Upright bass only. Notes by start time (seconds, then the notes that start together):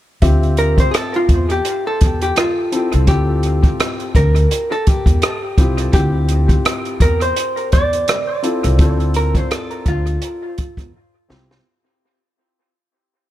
0.23 D2
1.29 E2
2.02 E2
2.93 C2
3.08 D2
4.15 D2
5.06 E2
5.58 C2
5.94 D2
7.01 E2
7.73 E2
8.64 C2
8.79 D2
9.86 D2
10.77 E2
11.30 C2